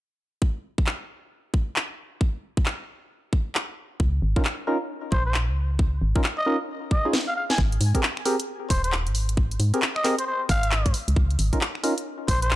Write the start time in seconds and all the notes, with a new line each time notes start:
0.42 kick
0.78 kick
0.87 clap
1.54 kick
1.76 clap
2.21 kick
2.57 kick
2.66 clap
3.33 kick
3.55 clap
4.00 C#2, kick
4.22 G#1
4.36 C#4 D#4 F4 A#4, kick
4.45 clap
4.67 C#4 D#4 F4 A#4
5.12 A#1 C5, kick
5.26 C5
5.34 clap
5.48 C#2
5.79 kick
6.02 G#1
6.16 C#4 D#4 F4 A#4, kick
6.24 clap
6.38 D#5
6.46 C#4 D#4 F4 A#4
6.91 D#5, kick
7.05 C#4 D#4 F4 G#4
7.13 snare
7.28 F5
7.36 F5
7.50 G#5, snare
7.58 G#1, kick
7.72 closed hi-hat
7.81 G#2, open hi-hat
7.95 C4 G4 G#4 A#4, kick, closed hi-hat
8.03 clap
8.17 finger snap
8.25 C4 G4 G#4 A#4, open hi-hat
8.40 closed hi-hat
8.70 D#1 C5, kick, open hi-hat
8.84 C5, closed hi-hat
8.92 clap
9.07 G#1, closed hi-hat
9.15 open hi-hat
9.29 closed hi-hat
9.37 kick
9.51 closed hi-hat
9.60 G#2, open hi-hat
9.74 C4 G4 G#4 A#4, closed hi-hat
9.82 clap
9.96 D#5, finger snap
10.04 C4 G4 G#4 A#4, clap, open hi-hat
10.18 C5, closed hi-hat
10.27 C5
10.49 G#1 F5, finger snap, kick, open hi-hat
10.63 closed hi-hat
10.72 finger snap, clap
10.86 G#2, kick, closed hi-hat
10.94 open hi-hat
11.08 C#2, closed hi-hat
11.16 C#2, kick
11.31 closed hi-hat
11.39 G#1, open hi-hat
11.53 C#4 D#4 F4 A#4, kick, closed hi-hat
11.61 clap
11.75 finger snap
11.83 C#4 D#4 F4 A#4, open hi-hat
11.98 closed hi-hat
12.28 A#1 C5, kick, open hi-hat
12.42 C5, closed hi-hat
12.51 clap